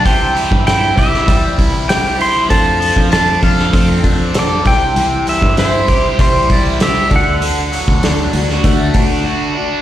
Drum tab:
HH |o-o-o-o-o-o-o-o-|o-o-o-o-o-o-o-o-|o-o-o-o-o-o-o-o-|o-o-o-o-o-o-----|
SD |----o--o----o---|----o--o----o---|----o-------o---|----o--o--------|
BD |o--o--o-o-o-----|o--o--o-o-o---o-|---o--o-o-o---o-|---o----o-o-----|